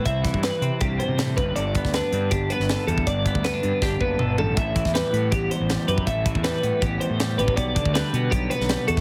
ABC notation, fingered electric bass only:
X:1
M:4/4
L:1/16
Q:1/4=160
K:G
V:1 name="Fingered electric bass" clef=bass
C,,3 G,,2 z C, z C,,2 z C,3 G,,,2 | G,,,3 D,,2 z G,,2 G,,,2 z G,,,2 z E,,2 | G,,,3 D,,2 z G,, z G,,,2 F,,,2 G,,,2 A,,,2 | A,,,3 E,,2 z A,,2 A,,,2 z A,,,2 z F,,2 |
A,,,3 E,,2 z A,, z A,,,2 z A,,3 A,,,2 | B,,,3 D,,2 z B,,2 B,,,2 z B,,,2 z E,,2 |]